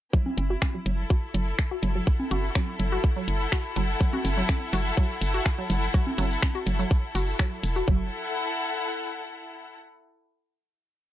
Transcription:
0.13 synth arpeggio sound F#3, string section E4, kick, low conga
0.26 high conga
0.38 fm bass F#1, closed hi-hat, high conga
0.50 synth arpeggio sound F#4
0.62 finger snap, kick, high conga
0.74 synth arpeggio sound F#3
0.86 fm bass F#1, closed hi-hat, low conga
0.97 string section A4
1.10 synth arpeggio sound F#4, kick
1.34 fm bass F#1, synth arpeggio sound F#3, closed hi-hat
1.59 finger snap, kick
1.71 synth arpeggio sound F#4
1.83 fm bass F#1, closed hi-hat, low conga
1.95 synth arpeggio sound F#3
2.05 string section F#5, kick
2.20 high conga
2.31 fm bass F#1, synth arpeggio sound F#4, closed hi-hat, high conga
2.55 synth arpeggio sound F#3, finger snap, kick, high conga
2.80 fm bass F#1, closed hi-hat, low conga
2.92 synth arpeggio sound F#4
3.04 kick
3.16 synth arpeggio sound F#3
3.28 fm bass F#1, closed hi-hat
3.52 synth arpeggio sound F#4, finger snap, kick
3.76 fm bass F#1, synth arpeggio sound F#3, closed hi-hat
4.01 kick, low conga, shaker
4.13 synth arpeggio sound F#4, high conga
4.25 fm bass F#1, closed hi-hat, high conga, shaker
4.37 synth arpeggio sound F#3, shaker
4.49 finger snap, kick, high conga, shaker
4.73 fm bass F#1, synth arpeggio sound F#4, closed hi-hat, low conga, shaker
4.86 shaker
4.97 synth arpeggio sound F#3, kick, shaker
5.21 fm bass F#1, closed hi-hat, shaker
5.34 synth arpeggio sound F#4, shaker
5.46 finger snap, kick, shaker
5.58 synth arpeggio sound F#3
5.70 fm bass F#1, closed hi-hat, low conga, shaker
5.82 shaker
5.94 synth arpeggio sound F#4, kick, low conga, shaker
6.07 high conga
6.18 fm bass F#1, synth arpeggio sound F#3, closed hi-hat, high conga, shaker
6.31 shaker
6.42 finger snap, kick, high conga, shaker
6.55 synth arpeggio sound F#4
6.66 fm bass F#1, closed hi-hat, low conga, shaker
6.79 synth arpeggio sound F#3, shaker
6.91 kick, shaker
7.15 fm bass F#1, synth arpeggio sound F#4, closed hi-hat, shaker
7.27 shaker
7.39 synth arpeggio sound F#3, finger snap, kick, shaker
7.63 fm bass E1, closed hi-hat, shaker
7.76 synth arpeggio sound F#4, shaker
7.88 fm bass F#1, synth arpeggio sound F#3, string section E4, kick
7.95 string section A4
8.03 string section F#5

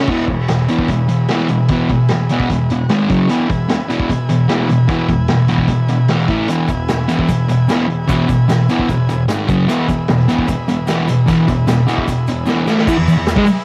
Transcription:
0.07 distorted electric guitar E2 B2 E3, transistor combo organ G#4 B4, kick, crash
0.12 transistor combo organ E5
0.28 distorted electric guitar E2 B2, kick, closed hi-hat
0.48 distorted electric guitar E2 B2, snare, closed hi-hat
0.68 distorted electric guitar E2 B2 E3, closed hi-hat
0.78 kick
0.88 distorted electric guitar E2 B2, kick, closed hi-hat
1.08 distorted electric guitar E2 B2, closed hi-hat
1.28 distorted electric guitar E2 B2 E3, snare, closed hi-hat
1.48 distorted electric guitar E2 B2, closed hi-hat
1.68 distorted electric guitar E2 B2 E3, kick, closed hi-hat
1.89 distorted electric guitar E2 B2, kick, closed hi-hat
2.08 distorted electric guitar E2 B2, snare, closed hi-hat
2.29 distorted electric guitar E2 B2 E3, transistor combo organ D#5, closed hi-hat
2.40 kick
2.50 distorted electric guitar E2 B2, transistor combo organ E5, kick, closed hi-hat
2.70 distorted electric guitar E2 B2, transistor combo organ F#5, closed hi-hat
2.89 distorted electric guitar G#2 D#3 G#3, transistor combo organ G#5, snare, closed hi-hat
3.08 distorted electric guitar F#2 C#3 F#3, kick, closed hi-hat
3.14 transistor combo organ C#6
3.29 distorted electric guitar E2 B2 E3, transistor combo organ B4 E5 G#5, closed hi-hat
3.49 distorted electric guitar E2 B2, kick, closed hi-hat
3.69 distorted electric guitar E2 B2, snare, closed hi-hat
3.88 distorted electric guitar E2 B2 E3, closed hi-hat
4.00 kick
4.10 distorted electric guitar E2 B2, kick, closed hi-hat
4.29 distorted electric guitar E2 B2, closed hi-hat
4.48 distorted electric guitar E2 B2 E3, snare, closed hi-hat
4.69 distorted electric guitar E2 B2, closed hi-hat
4.88 distorted electric guitar E2 B2 E3, kick, closed hi-hat
5.09 distorted electric guitar E2 B2, kick, closed hi-hat
5.28 distorted electric guitar E2 B2, snare, closed hi-hat
5.48 distorted electric guitar E2 B2 E3, closed hi-hat
5.58 kick
5.68 distorted electric guitar E2 B2, kick, closed hi-hat
5.88 distorted electric guitar E2 B2, closed hi-hat
6.08 distorted electric guitar E2 B2 E3, snare, closed hi-hat
6.28 distorted electric guitar A2 E3 A3, kick, closed hi-hat
6.48 distorted electric guitar E2 B2 E3, transistor combo organ B4 E5 G#5, closed hi-hat, shaker
6.68 distorted electric guitar E2 B2, kick, closed hi-hat, shaker
6.88 distorted electric guitar E2 B2, snare, closed hi-hat, shaker
7.08 distorted electric guitar E2 B2 E3, closed hi-hat, shaker
7.19 kick
7.28 distorted electric guitar E2 B2, kick, closed hi-hat, shaker
7.48 distorted electric guitar E2 B2, closed hi-hat, shaker
7.69 distorted electric guitar E2 B2 E3, snare, closed hi-hat, shaker
7.88 distorted electric guitar E2 B2, closed hi-hat
8.07 distorted electric guitar E2 B2 E3, kick, closed hi-hat, shaker
8.28 distorted electric guitar E2 B2, kick, closed hi-hat, shaker
8.48 distorted electric guitar E2 B2, snare, closed hi-hat, shaker
8.69 distorted electric guitar E2 B2 E3, closed hi-hat, shaker
8.79 kick
8.89 distorted electric guitar E2 B2, kick, closed hi-hat, shaker
9.09 distorted electric guitar E2 B2, closed hi-hat, shaker
9.28 distorted electric guitar G#2 D#3 G#3, snare, closed hi-hat, shaker
9.48 distorted electric guitar F#2 C#3 F#3, kick, closed hi-hat, shaker
9.68 distorted electric guitar E2 B2 E3, transistor combo organ G#4 B4 E5, closed hi-hat, shaker
9.89 distorted electric guitar E2 B2, kick, closed hi-hat, shaker
10.08 distorted electric guitar E2 B2, snare, closed hi-hat, shaker
10.28 distorted electric guitar E2 B2 E3, closed hi-hat, shaker
10.39 kick
10.48 distorted electric guitar E2 B2, kick, closed hi-hat, shaker
10.68 distorted electric guitar E2 B2, closed hi-hat, shaker
10.87 distorted electric guitar E2 B2 E3, snare, closed hi-hat, shaker
11.08 distorted electric guitar E2 B2, closed hi-hat, shaker
11.27 distorted electric guitar E2 B2 E3, kick, closed hi-hat, shaker
11.48 distorted electric guitar E2 B2, kick, closed hi-hat, shaker
11.67 distorted electric guitar E2 B2, snare, closed hi-hat, shaker
11.86 distorted electric guitar E2 B2 E3, closed hi-hat, shaker
11.98 kick
12.08 distorted electric guitar E2 B2, kick, closed hi-hat, shaker
12.27 distorted electric guitar E2 B2, closed hi-hat, shaker
12.45 distorted electric guitar E2 B2 E3, snare, shaker
12.66 distorted electric guitar A2 E3 A3, snare, shaker
12.78 snare
12.87 distorted electric guitar E2 E3, transistor combo organ G#4 B4 E5, kick, crash, shaker
12.98 distorted electric guitar E2
13.07 distorted electric guitar E2, open hi-hat, shaker
13.18 distorted electric guitar E2
13.26 snare, open hi-hat, shaker
13.36 distorted electric guitar G#2 G#3, kick
13.46 muted distorted electric guitar stroke, open hi-hat, shaker

